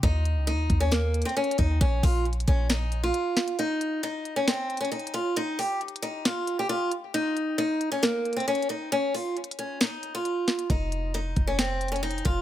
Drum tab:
HH |x-----x-----x-----x-----x-----x-x-x-x-x-x-x-----|x-----o-----x-x-x-x-----x-----x-----x-----x--x--|x-----x-----x-----x-----x-----x-x-x-x-x-x-x-----|x-----o-----x-x-x-x-----x-----x-----x-----x-----|
SD |------------------------o-----------------------|------------------------o-----------------o-----|------------------------o-----------------------|------------------------o-----------------------|
BD |o-----------------o-----------------------o-----|o-----o-----------o-----------------------------|------------------------------------------------|------------------------------------------------|

HH |x-----x-----x-----x-----x-----x-x-x-x-x-x-x-----|x-----o-----x-x-x-x-----x-----x-----x-----x--x--|x-----x-----x-----x-----x-----x-x-x-x-x-x-x-----|
SD |------------------------o-----------------------|------------------------o-----------------o-----|------------------------o-----------------------|
BD |------------------------------------------------|------------------------------------------------|o-----------------o-----------------------o-----|